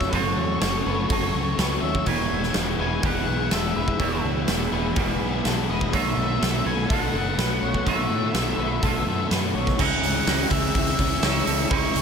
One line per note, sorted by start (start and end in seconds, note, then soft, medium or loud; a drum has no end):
0.00 0.10 F#2 medium
0.00 0.11 C#3 medium
0.00 0.13 F#3 medium
0.00 0.11 A3 medium
0.00 0.13 A3 medium
0.00 0.12 C#4 medium
0.00 0.13 C#4 medium
0.00 0.15 F#4 medium
0.00 2.02 A4 medium
0.00 0.12 C#5 medium
0.00 9.75 F#5 medium
0.00 2.02 C#6 medium
0.00 9.75 E6 medium
0.00 kick medium
0.00 snare soft
0.10 0.33 F#1 medium
0.10 0.85 F#2 medium
0.10 0.85 C#3 loud
0.10 0.60 F#3 medium
0.10 0.61 A3 loud
0.10 1.80 C#5 medium
0.10 0.61 C#5 medium
0.10 kick medium
0.10 open hi-hat medium
0.15 0.62 C#4 loud
0.15 0.63 F#4 loud
0.37 0.57 E2 medium
0.60 0.81 F#1 medium
0.60 0.88 F#3 medium
0.60 0.86 A3 medium
0.60 0.85 C#4 medium
0.60 0.85 F#4 medium
0.60 snare loud
0.60 open hi-hat medium
0.85 1.06 F#1 medium
0.85 1.11 F#3 medium
0.85 1.11 A3 medium
0.85 1.11 C#4 medium
0.85 1.13 F#4 medium
0.85 1.10 B4 medium
1.10 1.30 F#1 medium
1.10 1.82 F#2 medium
1.10 1.83 C#3 medium
1.10 1.57 F#3 medium
1.10 1.58 A3 medium
1.10 1.59 C#4 loud
1.10 1.61 F#4 loud
1.10 1.58 A4 medium
1.10 kick loud
1.10 open hi-hat medium
1.34 1.54 C#2 medium
1.58 1.78 C#2 medium
1.58 2.08 F#3 medium
1.58 2.05 A3 medium
1.58 2.06 C#4 medium
1.58 2.09 F#4 medium
1.58 1.83 B4 medium
1.58 snare loud
1.58 open hi-hat medium
1.81 2.02 D#2 medium
1.81 2.06 C#5 medium
1.81 2.06 E5 medium
1.95 kick medium
2.06 2.26 E1 medium
2.06 3.02 E2 medium
2.06 2.80 B2 medium
2.06 2.54 E3 loud
2.06 2.55 G#3 loud
2.06 2.57 B3 loud
2.06 5.91 G#4 medium
2.06 3.05 G#4 loud
2.06 2.55 C#5 medium
2.06 2.51 G#5 medium
2.06 9.76 B5 medium
2.06 kick medium
2.06 open hi-hat medium
2.10 2.58 E4 loud
2.31 2.51 E1 medium
2.43 snare soft
2.54 2.75 E1 medium
2.54 2.82 E3 medium
2.54 2.81 G#3 medium
2.54 2.79 B3 medium
2.54 2.78 E4 medium
2.54 snare loud
2.54 open hi-hat medium
2.78 2.99 E1 medium
2.78 3.04 E3 medium
2.78 3.03 G#3 medium
2.78 3.05 B3 medium
2.78 3.05 E4 medium
2.78 3.55 B4 medium
2.78 3.05 G#5 medium
3.02 3.23 E1 medium
3.02 3.75 E2 loud
3.02 3.76 B2 medium
3.02 3.51 E3 loud
3.02 3.51 G#3 loud
3.02 3.54 B3 loud
3.02 3.55 E4 loud
3.02 3.51 G#4 medium
3.02 4.00 G#4 medium
3.02 kick loud
3.02 open hi-hat medium
3.06 3.55 F#5 loud
3.27 3.47 B1 medium
3.51 3.72 E1 medium
3.51 4.00 E3 medium
3.51 4.00 G#3 medium
3.51 4.01 B3 medium
3.51 4.02 E4 medium
3.51 3.76 A4 medium
3.51 3.75 E5 medium
3.51 snare loud
3.51 open hi-hat medium
3.76 3.96 E1 medium
3.76 3.99 B4 medium
3.76 4.21 E5 medium
3.88 kick medium
3.99 4.20 E1 medium
3.99 4.72 E2 loud
3.99 4.73 B2 loud
3.99 4.47 E3 medium
3.99 4.48 G#3 loud
3.99 4.50 B3 loud
3.99 4.51 E4 loud
3.99 4.96 G#4 loud
3.99 4.48 C#5 medium
3.99 kick loud
3.99 open hi-hat soft
4.24 4.44 C#2 medium
4.48 4.68 E1 medium
4.48 4.74 E3 medium
4.48 4.73 G#3 medium
4.48 4.72 B3 medium
4.48 4.71 E4 medium
4.48 snare loud
4.48 open hi-hat medium
4.71 4.92 E1 medium
4.71 4.97 E3 medium
4.71 4.97 G#3 medium
4.71 4.98 B3 medium
4.71 4.99 E4 medium
4.71 5.48 B4 medium
4.95 5.17 E1 medium
4.95 5.69 E2 medium
4.95 5.69 B2 loud
4.95 5.44 E3 medium
4.95 5.45 G#3 loud
4.95 5.46 B3 loud
4.95 5.47 E4 loud
4.95 5.45 G#4 medium
4.95 5.93 G#4 medium
4.95 kick loud
4.95 open hi-hat medium
5.21 5.41 B1 medium
5.44 5.65 B1 medium
5.44 5.93 E3 medium
5.44 5.92 G#3 medium
5.44 5.95 B3 medium
5.44 5.95 E4 medium
5.44 5.69 A4 medium
5.44 snare loud
5.44 open hi-hat medium
5.69 5.89 E1 medium
5.69 5.93 B4 medium
5.69 5.94 D#5 medium
5.81 kick medium
5.92 6.13 B1 medium
5.92 6.72 B2 medium
5.92 6.39 D#3 medium
5.92 6.41 A3 medium
5.92 6.43 B3 medium
5.92 6.44 F#4 loud
5.92 9.76 A4 medium
5.92 6.42 C#5 medium
5.92 6.69 E5 medium
5.92 kick medium
5.92 open hi-hat medium
6.17 6.37 B1 medium
6.41 6.62 B1 medium
6.41 6.89 D#3 medium
6.41 6.68 A3 medium
6.41 6.67 B3 medium
6.41 6.65 F#4 medium
6.41 snare loud
6.41 open hi-hat medium
6.65 6.86 B1 medium
6.65 6.90 A3 medium
6.65 6.90 B3 medium
6.65 6.91 F#4 medium
6.65 6.94 B4 medium
6.65 6.89 G#5 medium
6.89 7.10 B1 medium
6.89 7.62 B2 loud
6.89 7.36 D#3 loud
6.89 7.38 A3 medium
6.89 7.39 B3 loud
6.89 7.40 F#4 loud
6.89 7.39 A4 medium
6.89 7.89 F#5 loud
6.89 kick loud
6.89 open hi-hat medium
7.13 7.34 F#1 medium
7.38 7.58 B1 medium
7.38 7.85 D#3 medium
7.38 7.86 A3 medium
7.38 7.87 B3 medium
7.38 7.88 F#4 medium
7.38 7.62 B4 medium
7.38 snare loud
7.38 open hi-hat medium
7.62 7.82 B1 medium
7.62 7.86 C#5 medium
7.74 kick medium
7.85 8.06 B1 loud
7.85 8.58 B2 medium
7.85 8.33 D#3 loud
7.85 8.34 A3 loud
7.85 8.35 B3 loud
7.85 8.37 F#4 loud
7.85 8.35 C#5 medium
7.85 9.27 E5 medium
7.85 kick medium
7.85 open hi-hat medium
8.10 8.30 A2 medium
8.34 8.54 B1 medium
8.34 8.82 D#3 medium
8.34 8.60 A3 medium
8.34 8.59 B3 medium
8.34 snare loud
8.34 open hi-hat medium
8.38 8.57 F#4 medium
8.58 8.78 B1 medium
8.58 8.83 A3 medium
8.58 8.84 B3 medium
8.58 8.85 F#4 medium
8.58 8.83 B4 medium
8.82 9.03 B1 medium
8.82 9.55 B2 loud
8.82 9.29 D#3 medium
8.82 9.31 A3 loud
8.82 9.32 B3 loud
8.82 9.33 F#4 loud
8.82 9.31 A4 medium
8.82 kick loud
8.82 open hi-hat medium
9.06 9.27 F#2 medium
9.30 9.51 F#2 medium
9.30 9.77 D#3 medium
9.30 9.78 A3 medium
9.30 9.79 B3 medium
9.30 9.79 F#4 medium
9.30 9.55 B4 medium
9.30 snare loud
9.30 open hi-hat medium
9.54 9.75 B1 medium
9.54 9.79 C#5 medium
9.67 kick medium
9.67 snare soft
9.79 9.98 C#2 medium
9.79 11.22 C#3 loud
9.79 10.26 E3 medium
9.79 10.27 G#3 loud
9.79 10.28 C#4 loud
9.79 12.02 E4 medium
9.79 10.29 E4 loud
9.79 12.02 G#4 medium
9.79 10.27 G#4 loud
9.79 10.54 F#5 medium
9.79 12.02 C#6 medium
9.79 12.02 E6 medium
9.79 kick loud
9.79 crash loud
10.03 10.21 C#2 medium
10.03 open hi-hat medium
10.03 tambourine medium
10.26 10.45 C#2 medium
10.26 11.69 C#3 medium
10.26 11.23 E3 medium
10.26 10.53 G#3 medium
10.26 10.52 C#4 medium
10.26 10.50 E4 medium
10.26 10.51 F#4 medium
10.26 snare loud
10.26 open hi-hat medium
10.26 tambourine medium
10.50 10.69 C#2 medium
10.50 11.01 G#3 medium
10.50 11.00 C#4 medium
10.50 10.98 E4 medium
10.50 11.47 G#4 medium
10.50 10.74 E5 medium
10.50 kick medium
10.50 open hi-hat medium
10.50 tambourine medium
10.75 10.94 C#2 medium
10.75 11.71 E5 medium
10.75 kick loud
10.75 open hi-hat medium
10.87 tambourine medium
10.98 11.17 C#2 medium
10.98 11.24 G#3 medium
10.98 11.25 C#4 medium
10.98 11.26 E4 medium
10.98 kick medium
10.98 open hi-hat medium
11.11 tambourine soft
11.22 11.41 C#2 medium
11.22 11.70 C#3 medium
11.22 11.71 E3 medium
11.22 11.71 G#3 medium
11.22 11.72 C#4 loud
11.22 12.02 C#5 medium
11.22 snare loud
11.22 open hi-hat medium
11.22 tambourine medium
11.26 11.73 E4 medium
11.35 tambourine soft
11.46 11.65 C#2 medium
11.46 11.71 G#3 medium
11.46 11.71 C#4 medium
11.46 11.72 E4 medium
11.46 11.71 A4 medium
11.46 open hi-hat medium
11.70 11.89 C#2 medium
11.70 12.02 C#3 loud
11.70 12.02 E3 medium
11.70 12.02 G#3 loud
11.70 12.02 C#4 loud
11.70 12.02 E4 loud
11.70 12.02 G#4 medium
11.70 12.02 C#5 medium
11.70 kick loud
11.70 open hi-hat medium
11.95 12.02 C#2 medium
11.95 open hi-hat medium
11.95 tambourine medium